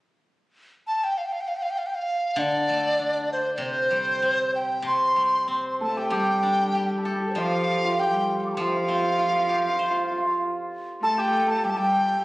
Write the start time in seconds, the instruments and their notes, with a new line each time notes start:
0.87 dizi A5
1.04 dizi G5
1.18 dizi F5
1.26 dizi G5
1.33 dizi F5
1.41 dizi G5
1.48 dizi F5
1.56 dizi G5
1.62 dizi F5
1.70 dizi G5
1.78 dizi F5
1.86 dizi G5
1.95 dizi F5
2.36 guzheng D3, dizi D5
2.69 guzheng A3
2.99 guzheng D4
3.33 dizi C5
3.55 guzheng C3, dizi D5
3.62 dizi C5
3.91 guzheng G3
4.22 guzheng C4
4.55 dizi G5
4.82 guzheng C3, dizi C6
5.16 guzheng G3
5.48 guzheng C4
5.80 cello A3, hammered dulcimer A4, dizi A5
5.96 hammered dulcimer G4, dizi G5
6.10 guzheng G3, cello G3, hammered dulcimer G4
6.14 dizi G5
6.43 guzheng D4
6.75 guzheng G4
6.98 hammered dulcimer A4
7.05 hammered dulcimer G4, guzheng A4
7.20 dizi F4 G4
7.27 dizi A4 C5
7.34 guzheng F3, cello F3, hammered dulcimer F4, dizi D5
7.39 dizi F5
7.85 hammered dulcimer F4
7.98 cello G3, hammered dulcimer G4, dizi G5
8.39 dizi F5 G5
8.46 dizi D6
8.50 dizi A5 C6
8.57 guzheng F3, cello F3, dizi F5 G5
8.61 hammered dulcimer F4
8.67 hammered dulcimer F4
8.76 hammered dulcimer F4
8.83 hammered dulcimer F4
8.88 guzheng C4, hammered dulcimer F4
8.95 hammered dulcimer F4
9.03 hammered dulcimer F4
9.10 hammered dulcimer F4
9.18 hammered dulcimer F4, guzheng F4
9.23 hammered dulcimer F4
9.30 hammered dulcimer F4
9.40 hammered dulcimer F4
9.47 hammered dulcimer F4, guzheng G4
9.55 hammered dulcimer F4
9.62 hammered dulcimer F4
9.69 hammered dulcimer F4
9.76 hammered dulcimer F4, guzheng C5
9.84 hammered dulcimer F4
9.91 hammered dulcimer F4
9.97 hammered dulcimer F4
10.04 hammered dulcimer F4
10.11 hammered dulcimer F4
10.18 hammered dulcimer F4
11.02 cello A3, hammered dulcimer A4, dizi A5
11.18 hammered dulcimer G4, dizi G5
11.47 hammered dulcimer A4, dizi A5
11.63 cello G3, hammered dulcimer G4, dizi G5
11.70 dizi A5
11.76 cello G3, hammered dulcimer G4, dizi G5